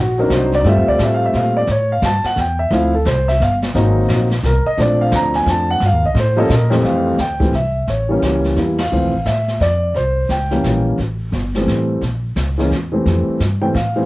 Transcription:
Already playing: upright bass A#1
0.00 grand piano F#4
0.18 grand piano F#3 C4 D4 D#4 A#4
0.30 upright bass C2, grand piano C5, kick, snare, hi-hat pedal
0.52 grand piano D5, snare
0.64 upright bass G2, grand piano G3 A3 C4 F4, brush sweep, kick, snare
0.69 grand piano E5
0.77 upright bass F2
0.88 upright bass D2, grand piano D5
0.99 upright bass A2, kick, snare, hi-hat pedal
1.03 grand piano E5
1.14 grand piano F5
1.26 grand piano E5
1.33 upright bass A#2, grand piano F5, kick, snare
1.57 grand piano D5
1.67 upright bass A2, grand piano C#5, brush sweep, kick, snare
1.92 grand piano F5
2.02 upright bass G2, grand piano A5, kick, snare, hi-hat pedal
2.24 grand piano F#5, muted upright bass stroke, snare
2.36 upright bass E2, grand piano G5, kick, snare
2.59 grand piano E5
2.71 upright bass D2, grand piano F3 A3 C4 E4 F5, brush sweep, kick, snare
2.95 grand piano A4
3.05 upright bass C2, grand piano C5, kick, snare, hi-hat pedal
3.28 grand piano E5, snare
3.40 upright bass G1, grand piano F5, kick, snare
3.62 snare
3.74 upright bass G#1, grand piano F#3 A#3 C4 D#4, brush sweep, kick, snare
4.09 upright bass A#1, kick, snare, hi-hat pedal
4.31 snare
4.43 upright bass C2, grand piano A#4, kick, snare
4.65 grand piano D#5, muted upright bass stroke
4.78 upright bass A#1, grand piano F3 A3 C4 D4 D5, brush sweep, kick, snare
5.01 grand piano F5
5.12 upright bass D2, kick, snare, hi-hat pedal
5.16 grand piano A#5
5.34 grand piano G#5, snare
5.46 upright bass F2, grand piano A5, kick, snare
5.71 grand piano F#5
5.80 upright bass G2, brush sweep, kick, snare
5.86 grand piano F5
5.92 upright bass D#2
6.04 upright bass C#2, grand piano D#5
6.15 upright bass A2, kick, snare
6.19 grand piano C5
6.37 grand piano F3 G3 A#3 C#4 A4 D#5
6.50 upright bass A#2, grand piano A#4, kick, snare, hi-hat pedal
6.70 grand piano F2 E3 G3 A3 C4, snare
6.83 upright bass F2, grand piano F5, brush sweep, kick, snare
7.18 upright bass D2, grand piano G5, kick, snare, hi-hat pedal
7.40 grand piano E3 G3 A3 C4, kick, snare
7.53 upright bass C2, grand piano E5, kick, snare
7.87 upright bass A1, grand piano C#5, brush sweep, kick, snare
8.09 grand piano E3 G3 A#3 C#4
8.22 upright bass C#2, kick, snare, hi-hat pedal
8.44 snare
8.56 upright bass E2, grand piano E3 G3 A#3 E4, kick, snare
8.78 grand piano F5, snare, ride
8.91 upright bass D2, grand piano E3 F3 A3 C4, brush sweep
9.02 upright bass C2
9.13 upright bass A1
9.25 upright bass A2, grand piano E5, kick, snare, hi-hat pedal
9.48 snare
9.60 upright bass F2, grand piano D5, kick, snare
9.94 upright bass C2, grand piano C5, brush sweep, kick, snare
10.29 upright bass C#2, grand piano G5, kick, snare, hi-hat pedal
10.51 grand piano E3 G3 A#3 C#4, snare
10.64 upright bass A#1, kick, snare, hi-hat pedal
10.98 upright bass A1, brush sweep, kick, snare
11.32 upright bass G1, kick, snare, hi-hat pedal
11.55 grand piano E3 G3 A3 C4, snare
11.67 upright bass A1, kick, snare
12.01 upright bass A#1, brush sweep, kick, snare
12.36 upright bass C#2, kick, snare, hi-hat pedal
12.58 grand piano E3 G#3 A#3 C#4, snare
12.70 upright bass E2, kick, snare
12.92 grand piano E3 G3 A3 C4
13.06 upright bass F2, brush sweep, kick, snare
13.28 muted upright bass stroke
13.40 upright bass G2, kick, snare, hi-hat pedal
13.62 grand piano E3 G3 A3 C4 G5
13.74 upright bass A2, grand piano F5, kick, snare
13.96 grand piano E3 G3 A3 C4

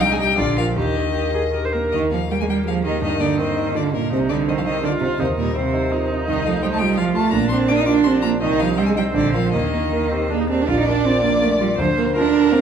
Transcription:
Already playing: grand piano C2 D#5, viola D#4
0.00 cello G3, grand piano D#4, violin G5
0.11 cello G#3, violin G#5
0.19 cello G3, grand piano G4, violin G5
0.38 grand piano A#1, cello D3, viola F4, violin D5
0.57 cello F3, grand piano F4 A#4, violin F5
0.76 grand piano D#2, cello D#3, viola G4, violin D#5
0.96 grand piano A#4
1.15 viola G4, grand piano G4
1.34 viola G#4, grand piano A#4
1.54 grand piano G4, viola A#4
1.65 viola C5
1.73 grand piano A#3, viola A#4
1.92 grand piano D#2, cello D#3, violin D#5
2.12 cello F3, grand piano A#3, violin F5
2.29 cello G3, viola A#3, grand piano A#4, violin G5
2.40 cello G#3, violin G#5
2.47 cello G3, grand piano G4, violin G5
2.65 cello F3, grand piano G#4, violin F5
2.84 cello D#3, grand piano G4, violin D#5
3.01 grand piano G2, cello D#3, viola D#4, violin D#5
3.20 cello D3, grand piano A#3, violin D5
3.38 cello D#3, viola C4, grand piano A#4, violin D#5
3.57 grand piano D#4
3.74 cello D3, viola A#3, grand piano F4, violin D5
3.93 cello A#2, grand piano D#4, violin A#4
4.11 grand piano C2, cello C3, viola D#4, violin C5
4.29 cello D3, grand piano G3, violin D5
4.48 cello D#3, viola C4, grand piano C5, violin D#5
4.58 cello F3, violin F5
4.65 cello D#3, grand piano D#4, violin D#5
4.82 cello D3, viola F4, grand piano F4, violin D5
5.00 cello C3, grand piano D#4, violin C5
5.19 grand piano D#2, cello C3, viola D#4, violin C5
5.38 cello A#2, grand piano G3, violin A#4
5.56 cello C3, viola C4, grand piano C5, violin C5
5.74 grand piano D#4
5.92 viola D#4, grand piano F4
6.11 grand piano D#4
6.28 grand piano C2, cello D#3, violin D#5
6.46 cello F3, grand piano A3, violin F5
6.63 cello G3, grand piano C5, violin G5
6.72 cello A3, violin A5
6.78 cello G3, grand piano F4, violin G5
6.97 cello F3, viola F4, grand piano G4, violin F5
7.15 cello A3, grand piano F4, violin A5
7.31 grand piano A#1, cello A#3, viola D4, violin A#5
7.49 grand piano A#3, cello C4, violin C6
7.68 viola A#3, cello D4, grand piano D5, violin D6
7.76 violin D#6
7.80 cello D#4
7.86 grand piano F4, violin D6
7.90 cello D4
8.04 cello C4, viola D4, grand piano G4, violin C6
8.22 cello A#3, grand piano F4, violin A#5
8.41 grand piano C2, cello D#3, viola D#4, violin D#5
8.59 cello F3, grand piano G3, violin F5
8.77 cello G3, viola C4, grand piano D#5, violin G5
8.86 cello G#3, violin G#5
8.96 cello G3, grand piano D#4, violin G5
9.14 grand piano A#1, cello D3, violin D5
9.33 cello F3, grand piano F4 A#4, violin F5
9.53 grand piano D#2, cello D#3, viola A#3, violin D#5
9.74 grand piano A#3
9.92 viola A#3, grand piano A#4
10.11 viola C4, grand piano G4
10.30 cello A#3, viola D4, grand piano G#4
10.41 viola D#4
10.50 cello C4, viola D4, grand piano G4
10.62 cello D4
10.68 grand piano A#1, cello F4, violin D5, viola D5
10.79 cello D#4
10.88 cello D4, grand piano A#4
11.05 cello C4, grand piano F4
11.23 cello A#3, grand piano A#4
11.42 cello A3, grand piano A#3
11.61 cello G3, grand piano F4
11.78 grand piano D2, cello F3, viola C5, violin C5
11.97 cello A#3, grand piano A#4
12.15 cello D4, grand piano F4, violin A#4, viola A#4
12.33 grand piano A#4
12.52 grand piano A#3, cello C4, violin F5

